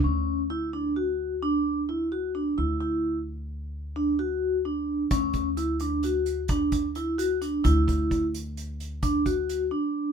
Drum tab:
HH |-----------|-----------|xxxxxxxxxxx|xxxxxxxxx--|
BD |-----------|-----------|oo----oo---|ooo---oo---|